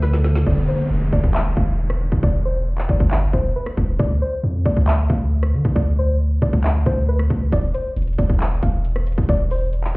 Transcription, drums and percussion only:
0.02 snare, closed hi-hat
0.13 snare
0.24 snare, closed hi-hat
0.35 snare
0.46 kick
1.13 kick
1.24 kick
1.35 clap
1.57 kick
1.90 cross-stick
2.12 kick
2.23 kick
2.78 clap
2.89 kick
3.00 kick
3.11 clap
3.33 kick
3.66 cross-stick
3.77 kick
3.99 kick
4.66 kick
4.77 kick
4.88 clap
5.10 kick
5.43 cross-stick
5.65 kick
5.76 kick
6.42 kick
6.53 kick
6.64 clap
6.86 kick
7.19 cross-stick
7.30 kick
7.52 kick, closed hi-hat
7.74 closed hi-hat
7.96 closed hi-hat
8.02 closed hi-hat
8.07 closed hi-hat
8.13 closed hi-hat
8.18 kick, closed hi-hat
8.30 kick
8.40 clap, closed hi-hat
8.63 kick, closed hi-hat
8.85 closed hi-hat
8.96 cross-stick
9.07 closed hi-hat
9.12 closed hi-hat
9.18 kick, closed hi-hat
9.23 closed hi-hat
9.29 kick, closed hi-hat
9.51 open hi-hat
9.73 closed hi-hat
9.84 clap

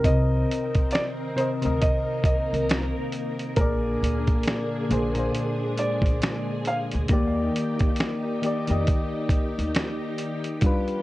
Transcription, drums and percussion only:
0.04 kick, closed hi-hat
0.51 closed hi-hat
0.74 kick, closed hi-hat
0.90 closed hi-hat
0.95 finger snap, snare
1.38 closed hi-hat
1.62 closed hi-hat
1.82 kick, closed hi-hat
2.24 kick, closed hi-hat
2.54 closed hi-hat
2.69 finger snap, snare, closed hi-hat
3.12 closed hi-hat
3.39 closed hi-hat
3.56 kick, closed hi-hat
4.04 closed hi-hat
4.27 kick, closed hi-hat
4.43 closed hi-hat
4.48 finger snap, snare
4.91 closed hi-hat
5.15 closed hi-hat
5.35 closed hi-hat
5.78 closed hi-hat
6.02 kick, closed hi-hat
6.22 finger snap, snare, closed hi-hat
6.65 closed hi-hat
6.92 closed hi-hat
7.08 kick, closed hi-hat
7.56 closed hi-hat
7.79 kick, closed hi-hat
7.96 closed hi-hat
8.00 finger snap, snare
8.43 closed hi-hat
8.68 closed hi-hat
8.87 kick, closed hi-hat
9.29 kick, closed hi-hat
9.59 closed hi-hat
9.75 finger snap, snare, closed hi-hat
10.18 closed hi-hat
10.44 closed hi-hat
10.61 kick, closed hi-hat
10.88 closed hi-hat

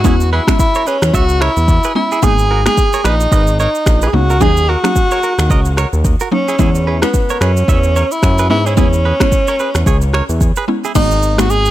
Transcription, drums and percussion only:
0.04 kick, shaker
0.20 shaker
0.48 finger snap, kick, cross-stick, shaker
0.59 kick, shaker
0.75 shaker
0.87 shaker
1.02 finger snap, cross-stick, shaker
1.14 kick, shaker
1.29 shaker
1.41 finger snap, cross-stick
1.57 shaker
1.68 kick, shaker
1.83 shaker
2.12 shaker
2.23 kick, shaker
2.39 shaker
2.66 finger snap, cross-stick, shaker
2.77 kick, shaker
2.93 shaker
3.04 finger snap, cross-stick, shaker
3.20 shaker
3.32 kick, shaker
3.47 shaker
3.60 shaker
3.75 shaker
3.86 finger snap, kick, cross-stick, shaker
4.02 shaker
4.30 shaker
4.41 kick, shaker
4.57 shaker
4.84 finger snap, cross-stick, shaker
4.96 kick, shaker
5.11 shaker
5.23 shaker
5.39 finger snap, cross-stick, shaker
5.50 kick, shaker
5.65 shaker
5.77 finger snap, cross-stick, shaker
5.93 shaker
6.04 kick, shaker
6.20 shaker
6.48 shaker
6.59 kick, shaker
6.75 shaker
7.02 finger snap, cross-stick, shaker
7.14 kick, shaker
7.29 shaker
7.41 finger snap, cross-stick, shaker
7.57 shaker
7.68 kick, shaker
7.83 shaker
7.96 shaker
8.11 shaker
8.23 finger snap, kick, cross-stick, shaker
8.38 shaker
8.66 shaker
8.77 kick, shaker
8.93 shaker
9.20 finger snap, kick, cross-stick, shaker
9.32 kick, shaker
9.47 shaker
9.59 shaker
9.75 finger snap, cross-stick, shaker
9.86 kick, shaker
10.02 shaker
10.14 finger snap, cross-stick
10.29 shaker
10.41 kick, shaker
10.56 shaker
10.84 shaker
10.95 kick, crash, shaker
11.11 shaker
11.22 shaker
11.38 finger snap, cross-stick, shaker
11.50 shaker
11.65 shaker

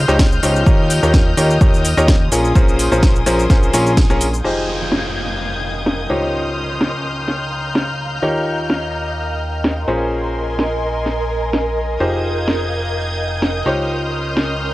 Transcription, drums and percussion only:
0.09 shaker
0.19 kick, snare, open hi-hat, shaker
0.32 shaker
0.43 open hi-hat, shaker
0.56 shaker
0.66 kick, shaker
0.90 open hi-hat, shaker
1.03 shaker
1.14 kick, snare, shaker
1.37 open hi-hat, shaker
1.50 shaker
1.61 kick, shaker
1.74 shaker
1.85 open hi-hat, shaker
1.98 shaker
2.08 kick, snare, shaker
2.32 open hi-hat, shaker
2.45 shaker
2.55 kick, shaker
2.68 shaker
2.79 open hi-hat, shaker
2.92 shaker
3.03 kick, snare, shaker
3.16 shaker
3.26 open hi-hat, shaker
3.39 shaker
3.50 kick, snare, shaker
3.63 shaker
3.73 open hi-hat, shaker
3.86 shaker
3.97 kick, snare, open hi-hat, shaker
4.10 shaker
4.21 open hi-hat, shaker
4.34 shaker
4.92 snare
5.86 snare
6.81 snare
7.28 snare
7.75 snare
8.70 snare
9.64 snare
10.59 snare
11.06 snare
11.53 snare
12.48 snare
13.42 snare
14.37 snare

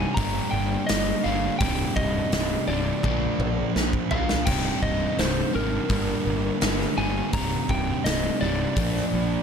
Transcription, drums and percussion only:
0.17 kick, open hi-hat
0.89 snare, open hi-hat
1.60 kick, open hi-hat
1.97 kick
2.32 snare, open hi-hat
3.03 kick, high tom
3.40 mid tom
3.76 snare
3.93 kick
4.11 floor tom
4.29 snare
4.46 kick, open hi-hat, crash
4.83 kick
5.18 snare, open hi-hat
5.89 kick, open hi-hat
6.61 snare, open hi-hat
6.81 snare
7.33 kick, open hi-hat
7.69 kick
8.05 snare, open hi-hat
8.76 kick, open hi-hat
8.96 snare

